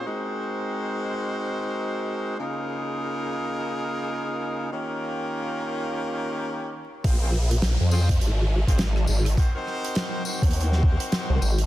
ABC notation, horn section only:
X:1
M:4/4
L:1/16
Q:"Swing 16ths" 1/4=103
K:Bbm
V:1 name="Horn section"
[A,CEGBc]16 | [D,B,EFAB]16 | [E,B,DF=GB]16 | [CDFAc] [CDFAc] z4 [CDFAc] z4 [CDFAc] z4 |
[CEGBc] [CEGBc]4- [CEGBc] [CEGBc]8- [CEGBc]2 |]